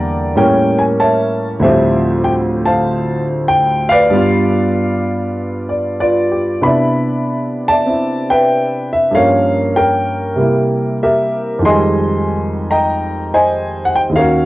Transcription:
grand piano
Already playing: E2 D3 G3 A#3 D5 G5 A#5
0.35 A2 G3 A#3 C#4 A#4 C#5 G5
0.78 G#5
1.00 C#5 E5 A5
1.59 D2 A2 F3 G3 C4 E5
1.64 F4 G4 C5
2.24 G5
2.66 C5 F5 A5
3.48 G5
3.89 B4 D5 F5
4.10 G2 G3 B3
4.14 F4
5.69 D5
6.00 F4 B4 D5
6.31 G4
6.61 C3 B3 D4 E4 D5 E5 B5
7.68 D5 E5 A5
7.86 C4 E4
8.30 B4 E5 G5
8.93 E5
9.11 G2 F3 A#3 F5
9.15 C#4 A#4 C#5
9.76 A#4 C#5 G5
10.36 C3 G3 A#3
10.41 E4
11.03 G4 A#4 E5
11.59 F2 D#3
11.65 G#3 D#5 G#5 C6
11.70 G3
12.71 D#5 G5 A#5
13.34 C5 D#5 G#5
13.85 F#5
13.96 G5
14.09 D#2 D#3
14.16 C#4 A#4 C#5 F5
14.20 F#4

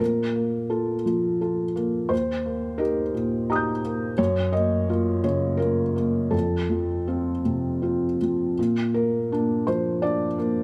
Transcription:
felt piano
0.00 A#2 A#4
0.36 A#3
0.70 F4 A4
1.06 F3
1.41 F4 A4
1.76 A#3
2.09 D#2 C5
2.46 A#3
2.78 D#4 G4 A#4
3.14 A#2
3.50 D#4 G4 A#5 D#6
3.56 G6
3.84 A#3
4.18 F#2 C#5
4.53 A#3 D#5
4.89 A#3 F4
5.24 C#3 C#5
5.57 A#3 F4 A#4
5.96 A#3
6.31 F2 A4
6.70 F3
7.07 C4 F4
7.45 C3
7.82 C4 F4
8.22 F3
8.59 A#2
8.94 A#3 A#4
9.32 A#3 D4
9.67 F3 C5
10.02 A#3 D4 D5
10.38 A#3

